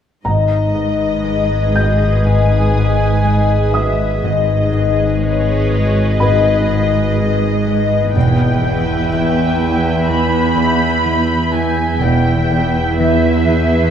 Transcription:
0.25 G#1 G#2 G#4 B4 D#5 A#5 D#6
0.75 G#2
1.24 G#3
1.76 G#3 G6
2.26 G#2 G#5
2.76 G#2
3.24 G#3
3.74 G#3 E5 D#6
4.22 G#1 G#2 G#4 B4 D#5
4.72 G#2
5.21 G#3 C#5
5.70 G#3
6.18 G#2 B4 D#5 B5
6.69 G#2
7.17 G#3
7.67 G#3
8.14 E1 E2 E4 B4 E5 G5 G6
8.64 E2
9.13 E3 B6
9.61 E3
10.09 E2 B5
10.57 E2
11.05 E3
11.53 E3 G#5
12.01 E1 E2 E4 B4 E5 G5
12.50 E2
12.99 E3 E5
13.47 E3
13.82 C7

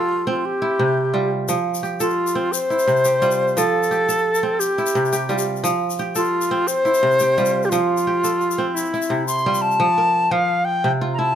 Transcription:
Already playing: F3 F4 G4 A4
0.27 C4 F4
0.45 G4
0.62 E4
0.79 C3
1.14 G3 F4
1.48 F3, shaker
1.74 shaker
1.83 G4, shaker
2.00 F4 A4, shaker
2.10 shaker
2.27 shaker
2.35 C4
2.52 C5, shaker
2.70 E4, shaker
2.79 shaker
2.88 C3, shaker
2.96 shaker
3.05 G4, shaker
3.22 G3 F4, shaker
3.31 shaker
3.48 shaker
3.57 F3 A4, shaker
3.83 shaker
3.91 G4, shaker
4.09 A4, shaker
4.35 shaker
4.43 C4
4.60 G4, shaker
4.78 E4, shaker
4.86 shaker
4.95 C3
5.05 shaker
5.13 G4, shaker
5.29 G3 F4, shaker
5.38 shaker
5.56 shaker
5.64 F3, shaker
5.90 shaker
5.98 G4, shaker
6.15 F4 A4, shaker
6.41 shaker
6.51 C4
6.67 C5, shaker
6.85 E4, shaker
6.94 shaker
7.03 C3
7.11 shaker
7.19 G4, shaker
7.38 G3 F4, shaker
7.46 shaker
7.62 G4, shaker
7.69 F3 F4, shaker
7.97 shaker
8.07 G4
8.24 A4, shaker
8.41 shaker
8.51 shaker
8.58 C4
8.75 E4, shaker
8.85 shaker
8.94 E4, shaker
9.02 shaker
9.10 C3
9.27 C6, shaker
9.38 shaker
9.46 G3 F4
9.54 shaker
9.62 A5
9.71 shaker
9.80 F3
9.98 A#4
10.31 F3 F5
10.65 G5
10.84 C3
11.01 F4
11.14 A#5
11.19 E4 A5

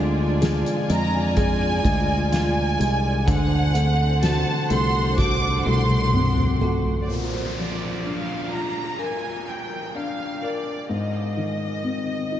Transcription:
Already playing: D2 D3 G#3 D4 F4 D5 G#5
0.41 G#3 G#4, snare, closed hi-hat
0.66 closed hi-hat
0.89 F2 G#3 D4 A#5, closed hi-hat
1.37 G#3 G#4 G#5, kick, closed hi-hat
1.85 D2 G#3 F4, kick, closed hi-hat
2.32 D4 F4 G#5, snare, closed hi-hat
2.79 C2 G#3 F4, closed hi-hat
3.27 D2 D3 D4 C5 F#5, kick, closed hi-hat
3.74 A3 C4, closed hi-hat
4.22 A3 F#4 A5, snare, closed hi-hat
4.70 C2 A3 C4 C6, closed hi-hat
5.17 A3 F#4 D6, kick, snare
5.66 C2 A3 F#4 C6, high tom
5.90 high tom
6.13 C4, mid tom
6.37 mid tom
6.61 A3 F#4, floor tom
6.85 floor tom
7.02 D5
7.09 A#2 C5, downlifter
7.57 F3 D5
8.04 D4 F5
8.52 F4 A#5
8.99 A#4 G#5
9.48 G5
9.95 D4 F5
10.42 A#4 D5
10.89 G#2 D#5
11.37 D#3
11.84 C4
12.32 D#4

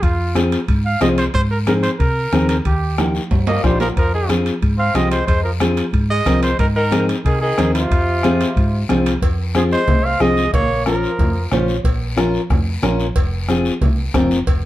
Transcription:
0.02 F2 F4, bombo low, high conga, high timbale, long guiro
0.35 C4 F4 G#4, bombo rim, high conga, high timbale, short guiro
0.52 high timbale, short guiro
0.68 G#2, bombo low, high conga, high timbale, long guiro
0.85 F5
1.00 C2 C4 F4 G#4 D#5, bombo rim, high conga, high timbale, low timbale, short guiro
1.18 C5, high timbale, short guiro
1.34 G#2 C5, bombo low, high conga, high timbale, long guiro
1.51 A#4
1.66 C4 D#4 G#4 A#4, bombo rim, high conga, high timbale, short guiro
1.83 C5, high timbale, short guiro
1.99 C3 A#4, bombo low, high conga, high timbale, long guiro
2.33 D#2 C4 D#4 G#4, bombo rim, high conga, high timbale, short guiro
2.49 A#4, high timbale, short guiro
2.65 D#2 G4, bombo low, high conga, high timbale, long guiro
2.98 A#3 D#4 G4, bombo rim, high conga, high timbale, short guiro
3.15 short guiro
3.31 G2, bombo low, high conga, low timbale, long guiro
3.47 A#3 D#5, low timbale
3.63 A#1 G3 A#3 D#4 F4 C5, bombo low, bombo rim, high conga, short guiro
3.80 F3 A#4, low timbale, short guiro
3.96 F2 F3 A#4, bombo low, high timbale, long guiro
4.14 D#3 G#4
4.29 C4 F4 G#4, bombo rim, high conga, high timbale, short guiro
4.46 high timbale, short guiro
4.62 G#2, bombo low, high conga, high timbale, long guiro
4.78 C4 F5
4.95 C2 G#3 C4 F4 G4 D#5, bombo rim, high conga, high timbale, short guiro
5.11 G#3 C5, high timbale, short guiro
5.27 F2 G#3 C5, bombo low, high conga, high timbale, long guiro
5.44 F3 A#4
5.60 C4 F4 G#4, bombo rim, high conga, high timbale, short guiro
5.77 high timbale, short guiro
5.93 G#2, bombo low, high conga, high timbale, long guiro
6.10 G#3 D#5
6.26 C2 C4 F4 A#4, bombo low, bombo rim, high conga, high timbale, short guiro
6.43 G#3 C5, high timbale, short guiro
6.59 G#2 D#3 A#4, bombo low, high conga, high timbale, long guiro
6.76 D#3 A#4
6.91 C4 D#4 G#4, bombo rim, high conga, high timbale, short guiro
7.09 high timbale, short guiro
7.25 C3 D#3 G#4, bombo low, high conga, high timbale, long guiro
7.41 D#3 G#4
7.58 D#2 C4 D#4 A#4, bombo rim, high conga, high timbale, short guiro
7.74 C3 F4, high timbale, short guiro
7.91 F2, bombo low, high conga, high timbale, long guiro
8.23 C4 F4 G#4, bombo rim, high conga, high timbale, short guiro
8.41 high timbale, short guiro
8.56 G#2, bombo low, high conga, high timbale, long guiro
8.89 C2 C4 F4 G#4, bombo rim, high conga, high timbale, low timbale, short guiro
9.06 high timbale, short guiro
9.22 F2, bombo low, cowbell, high conga, long guiro
9.55 F3 C4 F4 G#4, bombo rim, high conga, short guiro
9.71 G#3 C5, short guiro
9.88 C2, bombo low, cowbell, high conga, low conga, long guiro
10.05 C4 F5
10.20 C2 G#3 C4 F4 G#4 D#5, bombo rim, high conga, short guiro
10.37 short guiro
10.53 A#1 A#3 C#5, bombo low, cowbell, high conga, low conga, long guiro
10.86 F3 C#4 F4 A#4, bombo rim, high conga, short guiro
11.03 short guiro
11.19 F2, bombo low, cowbell, high conga, low conga, long guiro
11.51 A#1 C#4 F4 C5 C#5, bombo rim, high conga, low conga, low timbale, short guiro
11.68 short guiro
11.84 A#1, bombo low, cowbell, high conga, long guiro
12.16 C#4 F4 A#4, bombo rim, high conga, short guiro
12.34 short guiro
12.50 F2, bombo low, bombo rim, cowbell, high conga, low conga, long guiro
12.82 A#1 C#4 F4 A#4, bombo rim, high conga, low timbale, short guiro
12.99 short guiro
13.16 F1, bombo low, cowbell, long guiro
13.48 C4 F4 G#4, bombo rim, high conga, short guiro
13.65 short guiro
13.81 C2, bombo low, cowbell, high conga, low conga, long guiro
14.14 F1 C4 F4 A#4, bombo low, bombo rim, high conga, low conga, low timbale, short guiro
14.31 short guiro
14.47 F1, bombo low, cowbell, high conga, long guiro

